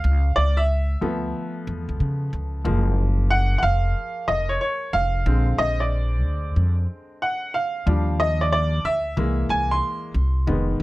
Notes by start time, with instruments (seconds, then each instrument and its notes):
Already playing: upright piano F5
0.04 upright bass C#2
0.36 upright bass C#2, upright piano D5
0.57 upright piano E5
1.01 upright bass D2, upright piano F3 A3 B3
1.67 upright bass E2
1.89 upright bass C#2
2.00 upright bass C#3
2.33 upright bass C#2
2.64 upright bass F#1, upright piano F3 G#3 A#3
3.30 upright piano F#5
3.58 upright piano F#5
3.63 upright bass F1, upright piano F5
4.28 upright bass F1, upright piano D#5
4.49 upright piano C#5
4.61 upright piano C#5
4.93 upright bass F1, upright piano F5
5.26 upright bass A#1, upright piano D3 G#3 C4
5.58 upright bass A#1, upright piano D#5
5.80 upright piano D5
6.24 upright bass D2
6.56 upright bass F2
7.22 upright piano F#5
7.54 upright piano F5
7.86 upright bass D#2, upright piano F3 G3 D4
8.20 upright piano D#5
8.41 upright piano D5
8.52 upright piano D5
8.85 upright bass D2, upright piano E5
9.17 upright bass C2, upright piano E3 G#3 A#3
9.49 upright bass C2, upright piano G#5
9.71 upright piano C6
10.14 upright bass C2
10.47 upright bass F1, upright piano D#3 G#3 B3